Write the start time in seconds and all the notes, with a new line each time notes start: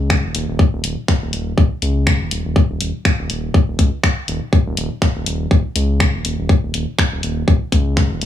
Already playing: C#2
0.10 finger snap, kick
0.24 D#1
0.35 D#1, closed hi-hat
0.48 D#1
0.59 kick
0.73 D#1
0.84 D#1, closed hi-hat
1.08 finger snap, kick
1.22 D#1
1.33 D#1, closed hi-hat
1.58 D#1, kick
1.82 C#2, closed hi-hat
2.07 finger snap, kick
2.20 D#1
2.31 D#1, closed hi-hat
2.45 D#1
2.56 kick
2.70 D#1
2.81 D#1, closed hi-hat
3.05 finger snap, kick
3.19 D#1
3.30 D#1, closed hi-hat
3.54 kick
3.68 D#1
3.79 C#2, kick, closed hi-hat
4.03 finger snap, kick
4.28 D#1, closed hi-hat
4.53 kick
4.66 D#1
4.77 D#1, closed hi-hat
5.02 finger snap, kick
5.15 D#1
5.26 D#1, closed hi-hat
5.51 D#1, kick
5.76 C#2, closed hi-hat
6.00 finger snap, kick
6.14 D#1
6.25 D#1, closed hi-hat
6.38 D#1
6.49 kick
6.63 D#1
6.74 D#1, closed hi-hat
6.99 finger snap, kick
7.12 D#1
7.23 D#1, closed hi-hat
7.48 D#1, kick
7.72 C#2, kick, closed hi-hat
7.97 finger snap, kick
8.11 D#1
8.21 D#1, closed hi-hat